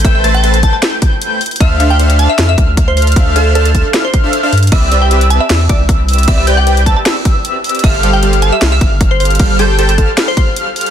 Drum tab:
CC |--------------------------------|--------------------------------|--------------------------------|x---------------x---------------|
HH |x---x---x-x-x---x---x---x---oxxx|x---x---x-x-x---x---x---x---oxxx|x---x---x-x-x---x---x---x---oxxx|x---x---x-x-x---x---x---x---oxxx|
SD |----------------o---------------|----------------o---------------|----------------o---------------|----------------o---------------|
BD |o-----------o-------o-----------|o-------------------o---o-------|o-----------o-------o-----------|o-------------------o---o-------|

CC |x---------------x---------------|x---------------x---------------|x---------------x---------------|
HH |x---x---x-x-x---x---x---x---oxxx|x---x---x-x-x---x---x---x---oxxx|x---x---x-x-x---x---x---x---oxx-|
SD |----------------o---------------|----------------o---------------|----------------o---------------|
BD |o-----------o-------o-----------|o-------------------o---o-------|o-----------o-------o-----------|